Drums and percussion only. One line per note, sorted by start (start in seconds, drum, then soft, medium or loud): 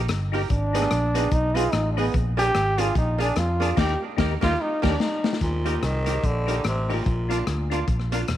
0.08 cross-stick loud
0.08 closed hi-hat medium
0.34 open hi-hat soft
0.50 kick loud
0.50 closed hi-hat medium
0.75 closed hi-hat medium
0.82 cross-stick medium
0.91 cross-stick loud
0.91 closed hi-hat medium
1.15 closed hi-hat medium
1.31 kick loud
1.31 closed hi-hat medium
1.57 closed hi-hat loud
1.72 cross-stick loud
1.72 closed hi-hat medium
1.98 open hi-hat soft
2.14 kick loud
2.14 closed hi-hat medium
2.39 closed hi-hat loud
2.55 cross-stick loud
2.55 closed hi-hat medium
2.78 closed hi-hat medium
2.95 kick loud
2.95 closed hi-hat medium
3.20 closed hi-hat loud
3.36 cross-stick loud
3.36 closed hi-hat medium
3.62 closed hi-hat medium
3.77 kick loud
3.77 snare loud
3.77 crash medium
4.18 kick loud
4.18 snare loud
4.42 kick loud
4.42 snare loud
4.84 kick loud
4.84 snare loud
4.84 crash medium
5.00 snare medium
5.24 snare loud
5.33 snare medium
5.41 kick medium
5.41 closed hi-hat medium
5.66 closed hi-hat medium
5.83 cross-stick loud
5.83 closed hi-hat medium
6.06 closed hi-hat medium
6.24 kick medium
6.24 closed hi-hat medium
6.48 closed hi-hat medium
6.64 cross-stick loud
6.64 closed hi-hat medium
6.90 open hi-hat soft
7.06 kick medium
7.06 closed hi-hat medium
7.31 closed hi-hat medium
7.47 cross-stick loud
7.47 closed hi-hat medium
7.71 closed hi-hat medium
7.88 kick loud
7.88 closed hi-hat medium
8.00 cross-stick medium
8.12 closed hi-hat medium
8.28 cross-stick loud
8.28 closed hi-hat medium